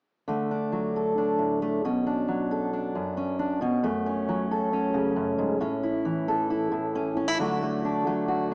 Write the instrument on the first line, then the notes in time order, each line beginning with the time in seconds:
steel-string acoustic guitar
0.28 D3 A3
0.51 D4
0.72 F#3
0.96 A4
1.18 D4
1.39 A2
1.62 A3
1.85 B2 C#4
2.07 D4
2.28 F#3
2.51 A4
2.73 D4
2.95 F#2
3.17 C#4
3.39 D4
3.61 B2 C#4
3.83 F#2 A3
4.06 C#4
4.29 F#3
4.51 A4
4.73 C#4
4.94 C#3
5.16 F#2
5.38 G#2
5.61 A2 C#4
5.83 E4
6.05 E3
6.28 A4
6.50 E4
6.72 A2
6.95 C#4
7.17 C#4
7.28 E4
7.39 D3 F#3 A3 D4 F#4
7.62 A3
7.85 D4
8.07 F#3 A3
8.28 F#4